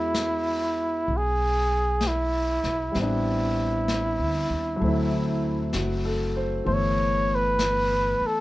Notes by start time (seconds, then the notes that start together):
Already playing: E2 G#3 B3 C#4 E4 F#4 C#5
0.14 brush sweep, snare, hi-hat pedal
1.08 B1, brush sweep
1.17 G#4
2.01 brush sweep, snare, hi-hat pedal
2.07 E4
2.64 B1, snare
2.92 A1 G3 B3, brush sweep, snare
2.99 C4 D4 E4
3.88 brush sweep, snare, hi-hat pedal
4.19 D2
4.50 D#2
4.76 F#3
4.80 D2 A3 C4, brush sweep
4.88 E4
5.73 F#1 F#4, brush sweep, snare, hi-hat pedal
6.05 A4
6.36 C5
6.65 G1 E3 A3 B3 C5, brush sweep
6.73 C#5
7.35 B4
7.59 brush sweep, snare, hi-hat pedal
8.21 muted upright bass stroke
8.26 A4